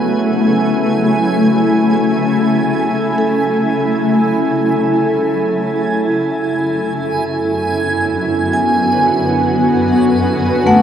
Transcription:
0.00 6.38 C#3 medium
0.00 10.82 F#3 medium
0.00 2.09 A3 medium
0.00 6.39 A3 medium
0.00 0.72 B3 medium
0.00 8.10 E4 medium
0.00 1.56 F#5 medium
0.00 9.81 G#5 medium
0.00 10.82 G#5 medium
3.18 8.52 A4 medium
6.38 10.82 F#2 medium
6.56 10.82 D3 medium
7.02 10.82 B3 medium
7.77 10.82 F#4 medium
8.12 10.82 B4 medium
8.53 10.82 G#5 medium
10.67 10.82 A3 medium
10.67 10.82 F#5 medium

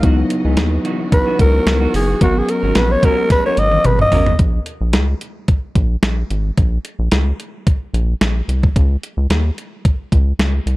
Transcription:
0.00 0.24 C#2 loud
0.00 2.19 C#3 medium
0.00 0.23 E3 medium
0.00 2.19 E3 medium
0.00 2.17 F#3 medium
0.00 0.17 B3 medium
0.00 2.19 B3 medium
0.00 2.18 B3 medium
0.00 2.17 D#4 medium
0.00 0.17 D#4 medium
0.00 2.17 E4 medium
0.00 4.36 F#4 medium
0.00 2.17 D#5 medium
0.00 0.18 F5 medium
0.00 kick loud
0.00 closed hi-hat medium
0.04 0.16 F#4 loud
0.18 muted clean electric guitar stroke soft
0.30 muted clean electric guitar stroke soft
0.30 closed hi-hat medium
0.45 0.59 C#2 medium
0.45 0.60 E3 medium
0.45 0.60 B3 medium
0.45 0.59 D#4 medium
0.45 0.59 G#4 medium
0.57 0.79 D#2 medium
0.57 snare loud
0.57 closed hi-hat medium
0.72 muted clean electric guitar stroke soft
0.84 1.04 E3 medium
0.84 0.99 B3 medium
0.84 0.98 D#4 medium
0.84 0.97 F#4 medium
0.84 closed hi-hat medium
0.99 muted clean electric guitar stroke soft
1.12 1.38 B4 loud
1.12 muted clean electric guitar stroke soft
1.12 kick loud
1.12 closed hi-hat medium
1.26 1.38 E3 medium
1.26 1.38 B3 medium
1.26 1.39 D#4 medium
1.26 1.39 F#4 medium
1.39 1.60 C#2 loud
1.39 1.91 A#4 medium
1.39 muted clean electric guitar stroke soft
1.39 kick medium
1.39 closed hi-hat medium
1.53 muted clean electric guitar stroke medium
1.66 1.87 C#2 medium
1.66 muted clean electric guitar stroke soft
1.66 snare loud
1.66 closed hi-hat medium
1.81 1.92 E3 medium
1.81 1.93 B3 medium
1.81 1.93 D#4 medium
1.81 1.94 F#4 medium
1.94 2.15 F#1 loud
1.94 2.20 G#4 medium
1.94 muted clean electric guitar stroke soft
1.94 open hi-hat medium
2.08 muted clean electric guitar stroke soft
2.20 2.42 G#1 loud
2.20 4.35 F#3 medium
2.20 4.37 G#3 medium
2.20 4.35 B3 medium
2.20 2.41 B3 medium
2.20 4.37 B3 medium
2.20 4.36 C#4 medium
2.20 2.36 C#4 medium
2.20 2.35 F#4 medium
2.20 2.40 F#4 medium
2.20 4.36 A#4 medium
2.20 2.35 A#4 medium
2.20 kick loud
2.20 closed hi-hat medium
2.36 2.52 G#4 medium
2.36 muted clean electric guitar stroke soft
2.48 2.79 A#4 loud
2.48 muted clean electric guitar stroke soft
2.48 closed hi-hat medium
2.63 2.73 G#1 medium
2.63 2.78 B3 medium
2.63 2.78 C#4 medium
2.63 2.77 F#4 medium
2.63 2.77 A#4 medium
2.75 2.97 A#1 loud
2.75 2.93 B4 loud
2.75 snare medium
2.75 closed hi-hat medium
2.90 3.07 C#5 medium
2.90 muted clean electric guitar stroke soft
3.03 3.23 B3 medium
3.03 3.17 C#4 medium
3.03 3.17 F#4 loud
3.03 3.16 A#4 loud
3.03 3.31 A#4 loud
3.03 kick loud
3.03 closed hi-hat medium
3.18 muted clean electric guitar stroke medium
3.30 3.45 B4 loud
3.30 muted clean electric guitar stroke soft
3.30 kick loud
3.30 snare medium
3.30 closed hi-hat medium
3.45 3.56 B3 medium
3.45 3.57 C#4 medium
3.45 3.57 F#4 medium
3.45 3.58 A#4 medium
3.45 3.61 C#5 loud
3.57 3.78 G#1 loud
3.57 3.88 D#5 loud
3.57 muted clean electric guitar stroke soft
3.57 closed hi-hat medium
3.72 muted clean electric guitar stroke soft
3.72 high tom medium
3.85 4.06 G#1 loud
3.85 4.00 B4 loud
3.85 muted clean electric guitar stroke soft
3.85 closed hi-hat medium
3.85 mid tom medium
3.99 4.38 D#5 loud
3.99 muted clean electric guitar stroke soft
3.99 mid tom medium
4.12 4.33 G#1 medium
4.12 4.32 B3 medium
4.12 4.26 C#4 medium
4.12 4.26 F#4 medium
4.12 4.25 A#4 loud
4.12 floor tom medium
4.12 open hi-hat medium
4.26 muted clean electric guitar stroke soft
4.26 floor tom medium
4.39 4.60 A#1 loud
4.39 kick medium
4.39 closed hi-hat medium
4.66 closed hi-hat medium
4.81 4.95 A#1 medium
4.93 5.15 C#2 medium
4.93 snare medium
4.93 closed hi-hat medium
5.21 closed hi-hat medium
5.48 kick loud
5.48 closed hi-hat medium
5.75 5.96 A#1 loud
5.75 kick medium
5.75 closed hi-hat medium
6.03 6.24 A#1 loud
6.03 snare medium
6.03 closed hi-hat medium
6.30 6.51 G#1 medium
6.30 closed hi-hat medium
6.58 6.79 A#1 medium
6.58 kick loud
6.58 closed hi-hat medium
6.85 closed hi-hat medium
6.99 7.09 A#1 medium
7.12 7.33 C#2 medium
7.12 snare medium
7.12 closed hi-hat medium
7.40 closed hi-hat medium
7.67 kick loud
7.67 closed hi-hat medium
7.94 8.15 A#1 loud
7.94 closed hi-hat medium
8.21 8.42 A#1 medium
8.21 snare loud
8.21 closed hi-hat medium
8.48 8.69 C2 medium
8.48 closed hi-hat medium
8.63 kick medium
8.76 8.97 C#2 loud
8.76 kick loud
8.76 closed hi-hat medium
9.03 closed hi-hat medium
9.17 9.27 C#2 medium
9.30 9.51 D#2 medium
9.30 snare medium
9.30 closed hi-hat medium
9.58 closed hi-hat medium
9.85 kick loud
9.85 closed hi-hat medium
10.12 10.33 C#2 medium
10.12 kick medium
10.12 closed hi-hat medium
10.39 10.60 C#2 loud
10.39 snare loud
10.39 closed hi-hat medium
10.66 10.77 C2 medium
10.66 closed hi-hat medium

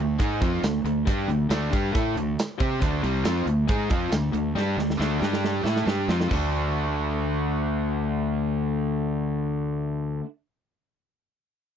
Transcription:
0.00 0.17 D2 medium
0.00 0.16 D3 medium
0.00 0.14 A3 medium
0.00 0.16 A3 medium
0.20 0.40 G#2 loud
0.20 0.41 G#3 medium
0.20 0.42 D#4 loud
0.20 0.42 G#4 loud
0.20 kick loud
0.20 closed hi-hat medium
0.42 0.62 F2 loud
0.42 0.63 F3 loud
0.42 0.63 C4 loud
0.42 0.63 F4 loud
0.42 kick loud
0.42 closed hi-hat medium
0.63 0.83 D2 medium
0.63 0.81 D3 medium
0.63 0.81 A3 medium
0.63 snare loud
0.63 closed hi-hat loud
0.63 tambourine loud
0.84 1.05 D2 medium
0.84 1.03 D3 medium
0.84 1.03 A3 medium
0.84 closed hi-hat medium
1.07 1.27 G2 medium
1.07 1.28 G3 loud
1.07 1.29 D4 loud
1.07 1.29 G4 loud
1.07 kick loud
1.07 closed hi-hat loud
1.28 1.49 D2 medium
1.28 1.46 D3 medium
1.28 1.46 A3 medium
1.28 closed hi-hat medium
1.50 1.70 D2 loud
1.50 1.72 D3 medium
1.50 1.72 A3 loud
1.50 1.72 D4 medium
1.50 snare loud
1.50 closed hi-hat loud
1.50 tambourine loud
1.73 1.93 G2 medium
1.73 1.94 G3 medium
1.73 1.94 D4 loud
1.73 1.94 G4 medium
1.73 kick loud
1.73 closed hi-hat medium
1.93 2.15 A2 loud
1.93 2.16 A3 loud
1.93 2.16 E4 loud
1.93 2.14 A4 loud
1.93 kick loud
1.93 closed hi-hat loud
1.97 2.17 A4 loud
2.15 2.36 D2 medium
2.15 2.34 D3 medium
2.15 2.34 A3 medium
2.15 closed hi-hat medium
2.39 snare loud
2.39 closed hi-hat loud
2.39 tambourine loud
2.60 2.80 C3 loud
2.60 2.81 C4 medium
2.60 2.82 G4 medium
2.60 2.82 C5 medium
2.60 kick loud
2.60 closed hi-hat medium
2.82 3.02 D2 medium
2.82 3.03 D3 loud
2.82 3.03 A3 loud
2.82 3.03 D4 loud
2.82 kick loud
2.82 closed hi-hat loud
3.03 3.23 C2 loud
3.03 3.24 C3 loud
3.03 3.24 G3 medium
3.03 3.25 C4 loud
3.03 closed hi-hat medium
3.24 3.45 F2 medium
3.24 3.46 F3 medium
3.24 3.46 C4 medium
3.24 3.46 F4 medium
3.24 snare loud
3.24 closed hi-hat medium
3.24 tambourine loud
3.46 3.66 D2 medium
3.46 3.64 D3 medium
3.46 3.65 A3 medium
3.46 closed hi-hat medium
3.68 3.89 G#2 loud
3.68 3.90 G#3 loud
3.68 3.90 D#4 loud
3.68 3.90 G#4 loud
3.68 kick loud
3.68 closed hi-hat loud
3.90 4.10 F2 loud
3.90 4.11 F3 medium
3.90 4.12 C4 medium
3.90 4.12 F4 loud
3.90 kick loud
3.90 closed hi-hat medium
4.11 4.32 D2 medium
4.11 4.30 D3 medium
4.11 4.30 A3 medium
4.11 snare loud
4.11 closed hi-hat loud
4.11 tambourine loud
4.33 4.54 D2 medium
4.33 4.52 D3 medium
4.33 4.52 A3 medium
4.33 closed hi-hat medium
4.55 4.76 G2 loud
4.55 4.77 G3 loud
4.55 4.77 D4 loud
4.55 4.78 G4 loud
4.55 snare medium
4.77 4.97 D2 medium
4.77 4.95 D3 medium
4.77 4.95 A3 medium
4.77 snare medium
4.90 snare medium
4.99 5.19 D2 loud
4.99 5.20 D3 medium
4.99 5.21 A3 loud
4.99 5.21 D4 loud
4.99 snare medium
5.21 5.62 G2 loud
5.21 5.64 G3 medium
5.21 5.65 D4 medium
5.21 5.65 G4 medium
5.21 snare medium
5.33 snare medium
5.44 snare medium
5.64 5.84 A2 loud
5.64 5.85 A3 loud
5.64 5.86 E4 medium
5.64 5.86 A4 loud
5.64 snare medium
5.76 snare medium
5.86 6.06 G2 medium
5.86 6.08 G3 medium
5.86 6.08 D4 medium
5.86 6.08 G4 loud
5.86 snare loud
6.08 6.28 F2 loud
6.08 6.30 F3 medium
6.08 6.29 C4 medium
6.08 6.30 F4 medium
6.08 snare loud
6.21 snare loud
6.29 10.20 D2 medium
6.29 10.22 D3 medium
6.29 10.24 A3 loud
6.29 10.25 D4 loud
6.29 10.26 F#4 loud
6.29 kick loud
6.29 floor tom loud
6.29 china medium

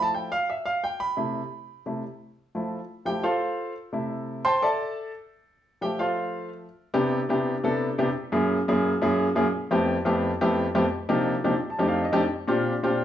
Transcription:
0.00 0.28 F3 medium
0.00 0.29 A3 soft
0.00 0.29 E4 medium
0.00 0.13 A5 medium
0.14 0.31 G5 medium
0.32 0.48 F5 medium
0.50 0.66 E5 medium
0.66 0.82 F5 medium
0.84 1.00 G5 medium
1.00 1.82 B5 medium
1.17 1.40 C3 medium
1.17 1.40 A3 medium
1.17 1.40 E4 medium
1.86 2.01 C3 medium
1.86 2.02 A3 soft
1.86 2.02 E4 medium
2.55 2.78 F3 soft
2.55 2.78 A3 soft
2.55 2.78 E4 medium
3.05 3.21 F3 soft
3.05 3.22 A3 soft
3.05 3.22 E4 medium
3.05 3.23 G4 medium
3.05 3.23 G5 medium
3.23 3.72 F4 medium
3.23 3.72 A4 medium
3.23 3.72 C5 medium
3.23 3.72 F5 medium
3.92 4.42 C3 medium
3.92 4.42 A3 soft
3.92 4.42 E4 medium
4.45 4.61 C5 medium
4.45 4.62 G5 medium
4.45 4.61 A5 medium
4.45 4.61 C6 loud
4.62 5.10 A4 medium
4.62 5.11 D5 medium
4.62 5.10 E5 medium
4.62 5.10 A5 medium
5.81 6.64 F3 medium
5.81 6.65 A3 soft
5.81 5.99 G4 medium
5.81 6.65 E5 medium
5.81 5.99 G5 medium
5.99 6.48 F4 medium
5.99 6.48 A4 medium
5.99 6.48 C5 medium
5.99 6.48 F5 medium
6.94 7.19 C3 medium
6.94 7.18 B3 medium
6.94 7.18 D4 medium
6.94 7.18 E4 medium
6.94 7.18 G4 medium
7.29 7.54 C3 medium
7.29 7.53 B3 medium
7.29 7.54 D4 medium
7.29 7.54 E4 medium
7.29 7.54 G4 medium
7.64 7.88 C3 medium
7.64 7.88 B3 medium
7.64 7.88 D4 medium
7.64 7.88 E4 medium
7.64 7.88 A4 medium
7.98 8.07 C3 medium
7.98 8.07 B3 medium
7.98 8.07 D4 medium
7.98 8.07 E4 medium
7.98 8.07 G4 medium
8.32 8.57 F#2 medium
8.32 8.57 A#3 medium
8.32 8.57 C#4 medium
8.32 8.57 E4 medium
8.32 8.57 G#4 medium
8.68 8.92 F#2 medium
8.68 8.92 A#3 medium
8.68 8.92 C#4 medium
8.68 8.92 E4 medium
8.68 8.92 G#4 medium
9.02 9.26 F#2 medium
9.02 9.26 A#3 medium
9.02 9.26 C#4 medium
9.02 9.26 E4 medium
9.02 9.27 G#4 medium
9.36 9.45 F#2 medium
9.36 9.45 A#3 medium
9.36 9.45 C#4 medium
9.36 9.45 E4 medium
9.36 9.45 G#4 medium
9.71 9.95 F2 medium
9.71 9.95 A3 medium
9.71 9.95 B3 medium
9.71 9.95 C4 medium
9.71 9.96 E4 medium
9.71 9.96 G4 medium
10.05 10.30 F2 medium
10.05 10.30 A3 medium
10.05 10.30 B3 medium
10.05 10.30 C4 medium
10.05 10.30 E4 medium
10.05 10.30 G4 medium
10.41 10.65 F2 medium
10.41 10.65 A3 medium
10.41 10.65 B3 medium
10.41 10.65 C4 medium
10.41 10.65 E4 medium
10.41 10.65 G4 loud
10.75 10.84 F2 medium
10.75 10.84 A3 medium
10.75 10.84 B3 medium
10.75 10.84 C4 medium
10.75 10.84 E4 medium
10.75 10.84 G4 loud
11.09 11.34 C3 medium
11.09 11.34 F3 medium
11.09 11.34 A#3 medium
11.09 11.34 D4 medium
11.09 11.34 D#4 medium
11.09 11.34 G4 medium
11.44 11.53 C3 medium
11.44 11.53 F3 medium
11.44 11.53 A#3 medium
11.44 11.53 D4 medium
11.44 11.53 D#4 medium
11.44 11.53 G4 medium
11.70 11.86 A5 medium
11.79 12.03 F2 medium
11.79 12.03 A3 medium
11.79 12.03 C4 medium
11.79 12.03 D4 medium
11.79 12.03 D#4 medium
11.79 12.03 G4 medium
11.88 12.04 F5 medium
12.05 12.21 D#5 medium
12.12 12.22 F2 medium
12.12 12.22 A3 medium
12.12 12.22 C4 medium
12.12 12.22 D4 medium
12.12 12.22 D#4 medium
12.12 12.22 G4 loud
12.48 12.72 A#2 medium
12.48 12.72 C4 medium
12.48 12.72 D4 medium
12.48 12.73 F4 medium
12.48 12.73 G4 medium
12.83 13.04 A#2 medium
12.83 13.04 C4 medium
12.83 13.04 D4 medium
12.83 13.04 F4 medium
12.83 13.04 G4 medium

